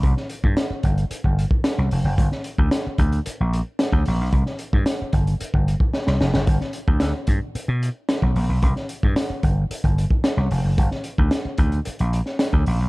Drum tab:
HH |x-x-x-xxx-x-x-o-|x-x-x-xxx-x-x-o-|x-x-x-xxx-x-----|x-x-x-x-x-x-x-o-|
SD |-o--o-------o---|-o--o-------o---|-o--o-------oooo|-o--o-------o---|
BD |o--o--o--o-o----|o--o--o------o--|o--o--o--o-o----|o--o--o------o--|

HH |x-x-x-x-xxx-x-o-|x-x-x-xxxxx-x-o-|
SD |-o--o-------o---|-o--o------oo---|
BD |o--o--o--o-o----|o--o--o------o--|